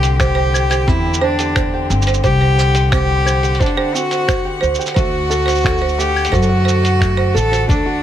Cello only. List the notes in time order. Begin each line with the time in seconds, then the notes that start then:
Already playing: G4
0.19 G4
0.88 E4
1.23 D4
2.24 G4
2.93 G4
3.62 D4
3.95 F#4
4.97 F#4
6.00 G4
6.33 F#4
7.36 A4
7.70 D4